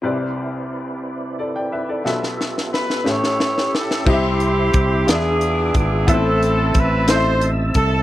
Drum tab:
CC |------------|------------|x-----------|------------|
HH |------------|------------|--x-x-x-x-x-|x-x-x-x-x-x-|
SD |------------|oooooooooooo|------o-----|------o-----|
BD |------------|------------|o---o-----o-|o---o-----o-|